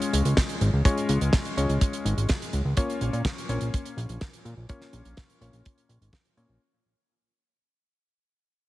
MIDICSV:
0, 0, Header, 1, 4, 480
1, 0, Start_track
1, 0, Key_signature, -5, "minor"
1, 0, Tempo, 480000
1, 852, Time_signature, 4, 2, 24, 8
1, 8683, End_track
2, 0, Start_track
2, 0, Title_t, "Electric grand piano"
2, 0, Program_c, 0, 2
2, 0, Note_on_c, 0, 56, 71
2, 0, Note_on_c, 0, 61, 70
2, 0, Note_on_c, 0, 65, 66
2, 0, Note_on_c, 0, 73, 83
2, 823, Note_off_c, 0, 56, 0
2, 823, Note_off_c, 0, 61, 0
2, 823, Note_off_c, 0, 65, 0
2, 823, Note_off_c, 0, 73, 0
2, 852, Note_on_c, 0, 56, 86
2, 852, Note_on_c, 0, 61, 77
2, 852, Note_on_c, 0, 65, 77
2, 852, Note_on_c, 0, 73, 92
2, 1543, Note_off_c, 0, 56, 0
2, 1543, Note_off_c, 0, 61, 0
2, 1543, Note_off_c, 0, 65, 0
2, 1543, Note_off_c, 0, 73, 0
2, 1573, Note_on_c, 0, 61, 63
2, 1573, Note_on_c, 0, 65, 61
2, 1573, Note_on_c, 0, 73, 78
2, 1574, Note_on_c, 0, 56, 69
2, 2744, Note_off_c, 0, 56, 0
2, 2744, Note_off_c, 0, 61, 0
2, 2744, Note_off_c, 0, 65, 0
2, 2744, Note_off_c, 0, 73, 0
2, 2773, Note_on_c, 0, 58, 85
2, 2773, Note_on_c, 0, 61, 78
2, 2773, Note_on_c, 0, 65, 76
2, 2773, Note_on_c, 0, 73, 92
2, 3463, Note_off_c, 0, 73, 0
2, 3464, Note_off_c, 0, 58, 0
2, 3464, Note_off_c, 0, 61, 0
2, 3464, Note_off_c, 0, 65, 0
2, 3493, Note_on_c, 0, 58, 68
2, 3493, Note_on_c, 0, 61, 66
2, 3493, Note_on_c, 0, 65, 67
2, 3493, Note_on_c, 0, 73, 82
2, 4664, Note_off_c, 0, 58, 0
2, 4664, Note_off_c, 0, 61, 0
2, 4664, Note_off_c, 0, 65, 0
2, 4664, Note_off_c, 0, 73, 0
2, 4692, Note_on_c, 0, 61, 74
2, 4693, Note_on_c, 0, 58, 82
2, 4693, Note_on_c, 0, 65, 76
2, 4694, Note_on_c, 0, 73, 93
2, 5383, Note_off_c, 0, 61, 0
2, 5384, Note_off_c, 0, 58, 0
2, 5384, Note_off_c, 0, 65, 0
2, 5384, Note_off_c, 0, 73, 0
2, 5414, Note_on_c, 0, 58, 64
2, 5414, Note_on_c, 0, 61, 62
2, 5414, Note_on_c, 0, 65, 62
2, 5414, Note_on_c, 0, 73, 73
2, 6349, Note_off_c, 0, 58, 0
2, 6349, Note_off_c, 0, 61, 0
2, 6349, Note_off_c, 0, 65, 0
2, 6349, Note_off_c, 0, 73, 0
2, 6373, Note_on_c, 0, 61, 73
2, 6373, Note_on_c, 0, 65, 70
2, 6374, Note_on_c, 0, 58, 79
2, 6374, Note_on_c, 0, 73, 85
2, 6584, Note_off_c, 0, 58, 0
2, 6584, Note_off_c, 0, 61, 0
2, 6584, Note_off_c, 0, 65, 0
2, 6584, Note_off_c, 0, 73, 0
2, 8683, End_track
3, 0, Start_track
3, 0, Title_t, "Analog synth bass"
3, 0, Program_c, 1, 38
3, 132, Note_on_c, 1, 37, 91
3, 223, Note_off_c, 1, 37, 0
3, 251, Note_on_c, 1, 37, 80
3, 343, Note_off_c, 1, 37, 0
3, 611, Note_on_c, 1, 32, 92
3, 703, Note_off_c, 1, 32, 0
3, 730, Note_on_c, 1, 37, 81
3, 823, Note_off_c, 1, 37, 0
3, 1091, Note_on_c, 1, 37, 91
3, 1183, Note_off_c, 1, 37, 0
3, 1211, Note_on_c, 1, 37, 82
3, 1303, Note_off_c, 1, 37, 0
3, 1572, Note_on_c, 1, 37, 93
3, 1663, Note_off_c, 1, 37, 0
3, 1690, Note_on_c, 1, 37, 80
3, 1783, Note_off_c, 1, 37, 0
3, 2052, Note_on_c, 1, 32, 93
3, 2144, Note_off_c, 1, 32, 0
3, 2173, Note_on_c, 1, 32, 78
3, 2264, Note_off_c, 1, 32, 0
3, 2532, Note_on_c, 1, 37, 84
3, 2624, Note_off_c, 1, 37, 0
3, 2650, Note_on_c, 1, 37, 83
3, 2742, Note_off_c, 1, 37, 0
3, 3010, Note_on_c, 1, 34, 94
3, 3103, Note_off_c, 1, 34, 0
3, 3130, Note_on_c, 1, 46, 83
3, 3223, Note_off_c, 1, 46, 0
3, 3489, Note_on_c, 1, 34, 94
3, 3582, Note_off_c, 1, 34, 0
3, 3611, Note_on_c, 1, 34, 77
3, 3703, Note_off_c, 1, 34, 0
3, 3970, Note_on_c, 1, 34, 87
3, 4063, Note_off_c, 1, 34, 0
3, 4091, Note_on_c, 1, 34, 78
3, 4183, Note_off_c, 1, 34, 0
3, 4451, Note_on_c, 1, 46, 88
3, 4543, Note_off_c, 1, 46, 0
3, 4569, Note_on_c, 1, 34, 81
3, 4662, Note_off_c, 1, 34, 0
3, 4930, Note_on_c, 1, 34, 89
3, 5023, Note_off_c, 1, 34, 0
3, 5050, Note_on_c, 1, 34, 83
3, 5142, Note_off_c, 1, 34, 0
3, 5410, Note_on_c, 1, 34, 92
3, 5502, Note_off_c, 1, 34, 0
3, 5529, Note_on_c, 1, 34, 79
3, 5622, Note_off_c, 1, 34, 0
3, 5891, Note_on_c, 1, 34, 89
3, 5983, Note_off_c, 1, 34, 0
3, 6011, Note_on_c, 1, 32, 78
3, 6103, Note_off_c, 1, 32, 0
3, 6372, Note_on_c, 1, 46, 86
3, 6464, Note_off_c, 1, 46, 0
3, 6491, Note_on_c, 1, 34, 82
3, 6583, Note_off_c, 1, 34, 0
3, 8683, End_track
4, 0, Start_track
4, 0, Title_t, "Drums"
4, 17, Note_on_c, 9, 42, 57
4, 117, Note_off_c, 9, 42, 0
4, 135, Note_on_c, 9, 42, 81
4, 235, Note_off_c, 9, 42, 0
4, 252, Note_on_c, 9, 42, 53
4, 352, Note_off_c, 9, 42, 0
4, 369, Note_on_c, 9, 38, 118
4, 373, Note_on_c, 9, 36, 113
4, 374, Note_on_c, 9, 42, 99
4, 469, Note_off_c, 9, 38, 0
4, 473, Note_off_c, 9, 36, 0
4, 474, Note_off_c, 9, 42, 0
4, 489, Note_on_c, 9, 42, 50
4, 589, Note_off_c, 9, 42, 0
4, 611, Note_on_c, 9, 42, 52
4, 711, Note_off_c, 9, 42, 0
4, 851, Note_on_c, 9, 36, 113
4, 854, Note_on_c, 9, 42, 100
4, 951, Note_off_c, 9, 36, 0
4, 954, Note_off_c, 9, 42, 0
4, 975, Note_on_c, 9, 42, 53
4, 1075, Note_off_c, 9, 42, 0
4, 1089, Note_on_c, 9, 42, 82
4, 1189, Note_off_c, 9, 42, 0
4, 1212, Note_on_c, 9, 42, 59
4, 1312, Note_off_c, 9, 42, 0
4, 1328, Note_on_c, 9, 38, 127
4, 1330, Note_on_c, 9, 42, 99
4, 1333, Note_on_c, 9, 36, 111
4, 1428, Note_off_c, 9, 38, 0
4, 1430, Note_off_c, 9, 42, 0
4, 1433, Note_off_c, 9, 36, 0
4, 1450, Note_on_c, 9, 42, 51
4, 1550, Note_off_c, 9, 42, 0
4, 1576, Note_on_c, 9, 42, 81
4, 1676, Note_off_c, 9, 42, 0
4, 1695, Note_on_c, 9, 42, 59
4, 1795, Note_off_c, 9, 42, 0
4, 1813, Note_on_c, 9, 42, 102
4, 1814, Note_on_c, 9, 36, 100
4, 1913, Note_off_c, 9, 42, 0
4, 1914, Note_off_c, 9, 36, 0
4, 1933, Note_on_c, 9, 42, 57
4, 2033, Note_off_c, 9, 42, 0
4, 2057, Note_on_c, 9, 42, 83
4, 2157, Note_off_c, 9, 42, 0
4, 2178, Note_on_c, 9, 42, 55
4, 2278, Note_off_c, 9, 42, 0
4, 2286, Note_on_c, 9, 42, 93
4, 2294, Note_on_c, 9, 38, 119
4, 2298, Note_on_c, 9, 36, 124
4, 2386, Note_off_c, 9, 42, 0
4, 2394, Note_off_c, 9, 38, 0
4, 2398, Note_off_c, 9, 36, 0
4, 2420, Note_on_c, 9, 42, 52
4, 2520, Note_off_c, 9, 42, 0
4, 2530, Note_on_c, 9, 42, 59
4, 2630, Note_off_c, 9, 42, 0
4, 2768, Note_on_c, 9, 42, 102
4, 2773, Note_on_c, 9, 36, 107
4, 2868, Note_off_c, 9, 42, 0
4, 2873, Note_off_c, 9, 36, 0
4, 2897, Note_on_c, 9, 42, 53
4, 2997, Note_off_c, 9, 42, 0
4, 3011, Note_on_c, 9, 42, 66
4, 3111, Note_off_c, 9, 42, 0
4, 3134, Note_on_c, 9, 42, 55
4, 3234, Note_off_c, 9, 42, 0
4, 3248, Note_on_c, 9, 36, 109
4, 3249, Note_on_c, 9, 42, 98
4, 3256, Note_on_c, 9, 38, 125
4, 3348, Note_off_c, 9, 36, 0
4, 3349, Note_off_c, 9, 42, 0
4, 3356, Note_off_c, 9, 38, 0
4, 3382, Note_on_c, 9, 42, 57
4, 3482, Note_off_c, 9, 42, 0
4, 3491, Note_on_c, 9, 42, 75
4, 3591, Note_off_c, 9, 42, 0
4, 3607, Note_on_c, 9, 42, 54
4, 3707, Note_off_c, 9, 42, 0
4, 3738, Note_on_c, 9, 42, 94
4, 3739, Note_on_c, 9, 36, 110
4, 3838, Note_off_c, 9, 42, 0
4, 3839, Note_off_c, 9, 36, 0
4, 3854, Note_on_c, 9, 42, 54
4, 3954, Note_off_c, 9, 42, 0
4, 3978, Note_on_c, 9, 42, 73
4, 4078, Note_off_c, 9, 42, 0
4, 4091, Note_on_c, 9, 42, 56
4, 4191, Note_off_c, 9, 42, 0
4, 4210, Note_on_c, 9, 42, 97
4, 4212, Note_on_c, 9, 38, 118
4, 4218, Note_on_c, 9, 36, 127
4, 4310, Note_off_c, 9, 42, 0
4, 4312, Note_off_c, 9, 38, 0
4, 4318, Note_off_c, 9, 36, 0
4, 4333, Note_on_c, 9, 42, 56
4, 4433, Note_off_c, 9, 42, 0
4, 4455, Note_on_c, 9, 42, 52
4, 4555, Note_off_c, 9, 42, 0
4, 4690, Note_on_c, 9, 42, 90
4, 4696, Note_on_c, 9, 36, 115
4, 4790, Note_off_c, 9, 42, 0
4, 4796, Note_off_c, 9, 36, 0
4, 4809, Note_on_c, 9, 38, 37
4, 4819, Note_on_c, 9, 42, 46
4, 4909, Note_off_c, 9, 38, 0
4, 4919, Note_off_c, 9, 42, 0
4, 4930, Note_on_c, 9, 42, 66
4, 5030, Note_off_c, 9, 42, 0
4, 5052, Note_on_c, 9, 42, 56
4, 5152, Note_off_c, 9, 42, 0
4, 5169, Note_on_c, 9, 42, 87
4, 5173, Note_on_c, 9, 38, 107
4, 5178, Note_on_c, 9, 36, 115
4, 5269, Note_off_c, 9, 42, 0
4, 5273, Note_off_c, 9, 38, 0
4, 5278, Note_off_c, 9, 36, 0
4, 5296, Note_on_c, 9, 42, 55
4, 5396, Note_off_c, 9, 42, 0
4, 5416, Note_on_c, 9, 42, 71
4, 5516, Note_off_c, 9, 42, 0
4, 5532, Note_on_c, 9, 42, 54
4, 5632, Note_off_c, 9, 42, 0
4, 5654, Note_on_c, 9, 42, 96
4, 5660, Note_on_c, 9, 36, 107
4, 5754, Note_off_c, 9, 42, 0
4, 5760, Note_off_c, 9, 36, 0
4, 5777, Note_on_c, 9, 42, 54
4, 5877, Note_off_c, 9, 42, 0
4, 5894, Note_on_c, 9, 42, 70
4, 5994, Note_off_c, 9, 42, 0
4, 6018, Note_on_c, 9, 42, 51
4, 6118, Note_off_c, 9, 42, 0
4, 6129, Note_on_c, 9, 36, 127
4, 6135, Note_on_c, 9, 38, 119
4, 6135, Note_on_c, 9, 42, 94
4, 6229, Note_off_c, 9, 36, 0
4, 6235, Note_off_c, 9, 38, 0
4, 6235, Note_off_c, 9, 42, 0
4, 6250, Note_on_c, 9, 42, 51
4, 6350, Note_off_c, 9, 42, 0
4, 6374, Note_on_c, 9, 42, 52
4, 6474, Note_off_c, 9, 42, 0
4, 8683, End_track
0, 0, End_of_file